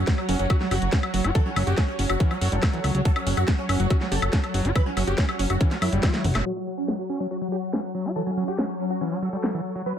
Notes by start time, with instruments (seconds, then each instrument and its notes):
Already playing: synth drone F#3, string section F#4 C#5 F#5
0.07 supersaw synth F#3, kick, snare, closed hi-hat
0.18 supersaw synth F#3, high woodblock
0.29 analog synth bass F#1, supersaw synth F#3, acid bass C#4, open hi-hat
0.39 analog synth bass F#1, acid bass F#3, supersaw synth C#4, closed hi-hat
0.50 supersaw synth F#3, acid bass F#4, kick, closed hi-hat, high woodblock
0.61 supersaw synth F#3, acid bass F#3, snare
0.71 analog synth bass F#1, supersaw synth F#4, acid bass G4, open hi-hat, high woodblock
0.82 analog synth bass F#1, closed hi-hat
0.93 acid bass C#4, kick, snare, closed hi-hat
1.03 closed hi-hat, high woodblock
1.14 analog synth bass F#1, acid bass F#3, open hi-hat
1.24 analog synth bass F#1, acid bass G4, closed hi-hat, high woodblock
1.35 acid bass E3, supersaw synth A4, kick, closed hi-hat
1.46 acid bass F#3, supersaw synth C#4
1.56 analog synth bass F#1, acid bass F#3, supersaw synth C#4, open hi-hat, high woodblock
1.67 analog synth bass F#1, supersaw synth F#4, acid bass G4, closed hi-hat
1.78 acid bass C#4, supersaw synth C#4, kick, snare, closed hi-hat, high woodblock
1.88 supersaw synth C#4
1.99 analog synth bass F#1, supersaw synth C#4, open hi-hat
2.10 analog synth bass F#1, supersaw synth F#4, closed hi-hat, high woodblock
2.20 acid bass E3, supersaw synth C#4, kick, closed hi-hat
2.31 acid bass F#3, supersaw synth C#4, high woodblock
2.41 analog synth bass F#1, acid bass F#3, supersaw synth A4, open hi-hat
2.52 analog synth bass F#1, acid bass G3, closed hi-hat
2.63 kick, snare, closed hi-hat, high woodblock
2.73 acid bass E3, closed hi-hat
2.84 analog synth bass C#2, open hi-hat, high woodblock
2.95 analog synth bass C#2, acid bass F#3, closed hi-hat
3.05 acid bass F#3, supersaw synth A4, kick, closed hi-hat
3.16 supersaw synth C#4, high woodblock
3.27 analog synth bass F#1, supersaw synth C#4, open hi-hat
3.37 analog synth bass F#1, supersaw synth F#4, closed hi-hat, high woodblock
3.48 supersaw synth C#4, kick, snare, closed hi-hat
3.58 supersaw synth C#4
3.69 analog synth bass F#1, acid bass C#4, supersaw synth C#4, open hi-hat, high woodblock
3.80 analog synth bass F#1, acid bass F#3, supersaw synth F#4, closed hi-hat
3.90 supersaw synth C#4, acid bass F#4, kick, closed hi-hat, high woodblock
4.01 acid bass F#3, supersaw synth C#4, snare
4.12 analog synth bass F#1, acid bass G4, supersaw synth A4, open hi-hat
4.22 analog synth bass F#1, closed hi-hat, high woodblock
4.33 acid bass C#4, kick, snare, closed hi-hat
4.44 closed hi-hat, high woodblock
4.54 analog synth bass F#1, acid bass F#3, open hi-hat
4.65 analog synth bass F#1, acid bass G4, closed hi-hat
4.75 acid bass E3, supersaw synth B4, kick, closed hi-hat, high woodblock
4.86 acid bass F#3, supersaw synth C#4
4.97 analog synth bass F#1, acid bass F#3, supersaw synth C#4, open hi-hat, high woodblock
5.07 analog synth bass F#1, supersaw synth F#4, acid bass G4, closed hi-hat
5.18 supersaw synth C#4, acid bass C#4, kick, snare, closed hi-hat
5.29 supersaw synth C#4, high woodblock
5.39 analog synth bass F#1, supersaw synth C#4, open hi-hat
5.50 analog synth bass F#1, supersaw synth F#4, closed hi-hat, high woodblock
5.61 acid bass E3, supersaw synth C#4, kick, closed hi-hat
5.71 acid bass F#3, supersaw synth C#4, snare, closed hi-hat
5.82 analog synth bass F#2, acid bass F#3, supersaw synth E4, open hi-hat, high woodblock
5.93 analog synth bass F#1, acid bass G3, closed hi-hat
6.03 acid bass F#4, kick, snare, closed hi-hat, high tom, high woodblock
6.14 acid bass F#3, snare, closed hi-hat
6.24 analog synth bass F#1, open hi-hat, mid tom
6.35 analog synth bass F#1, acid bass A3, snare, closed hi-hat, high woodblock
6.46 synth drone F#3, acid bass F#3, supersaw synth F#4
6.56 supersaw synth F#3
6.67 supersaw synth F#3
6.78 supersaw synth C#4
6.88 supersaw synth F#3, snare
6.99 supersaw synth F#3
7.09 supersaw synth F#3, acid bass C#4
7.20 acid bass F#3, supersaw synth C#4
7.31 supersaw synth F#3, acid bass F#4
7.41 supersaw synth F#3, acid bass F#3
7.52 supersaw synth F#4, acid bass G4
7.73 acid bass C#4, snare
7.95 acid bass F#3
8.05 acid bass G4
8.16 acid bass E3, supersaw synth A4
8.27 acid bass F#3, supersaw synth C#4
8.37 acid bass F#3, supersaw synth C#4
8.48 supersaw synth F#4, acid bass G4
8.58 supersaw synth C#4, acid bass C#4, snare
8.69 supersaw synth C#4
8.80 supersaw synth C#4
8.90 supersaw synth F#4
9.01 acid bass E3, supersaw synth C#4
9.12 acid bass F#3, supersaw synth C#4
9.22 acid bass F#3, supersaw synth A4
9.33 acid bass G3
9.44 snare
9.54 acid bass E3
9.76 acid bass F#3
9.86 acid bass F#3, supersaw synth B4, riser